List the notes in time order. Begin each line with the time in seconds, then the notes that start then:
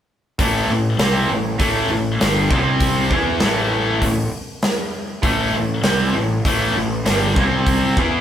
0.39 A1 A2 E3 A3, kick, open hi-hat
0.69 A1 A2 E3
0.98 C2 C3 G3 C4, snare, open hi-hat
1.30 A1 A2 E3
1.59 A1 A2 E3 A3, kick, open hi-hat
1.90 A1 A2 E3
2.21 G1 G2 D3 G3, snare, open hi-hat
2.51 C2 C3 G3 C4, kick
2.80 kick, open hi-hat
3.11 E2 E3 B3 E4, kick
3.40 A1 A2 E3 A3, snare, open hi-hat
4.02 A1 A2 E3, kick, open hi-hat
4.62 snare, open hi-hat
5.23 A1 A2 E3 A3, kick, open hi-hat
5.54 A1 A2 E3
5.83 C2 C3 G3 C4, snare, open hi-hat
6.15 A1 A2 E3
6.45 A1 A2 E3 A3, kick, open hi-hat
6.75 A1 A2 E3
7.06 G1 G2 D3 G3, snare, open hi-hat
7.36 C2 C3 G3 C4, kick
7.67 kick, open hi-hat
7.97 E2 E3 B3 E4, kick